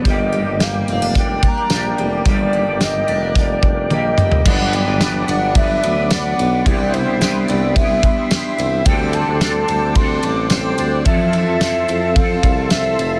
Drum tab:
CC |----------------|----------------|x---------------|----------------|
RD |----------------|----------------|--x-x-x-x-x-x-x-|x-x-x-x-x-x-x-x-|
HH |x---x---x---x---|x---x---x-------|----------------|----------------|
TB |----x-------x---|----x-----------|----x-------x---|----x-------x---|
SD |----o-------o---|----o-----------|----o-------o---|----o-------o---|
T1 |----------------|------------o---|----------------|----------------|
T2 |----------------|--------------o-|----------------|----------------|
FT |----------------|---------------o|----------------|----------------|
BD |o-------o-o-----|o-------o-o-----|o-------o-------|o-------o-o-----|

CC |----------------|----------------|
RD |x-x-x-x-x-x-x-x-|x-x-x-x-x-x-x-x-|
HH |----------------|----------------|
TB |----x-------x---|----x-------x---|
SD |----o-------o---|----o-------o---|
T1 |----------------|----------------|
T2 |----------------|----------------|
FT |----------------|----------------|
BD |o-------o-------|o-------o-o-----|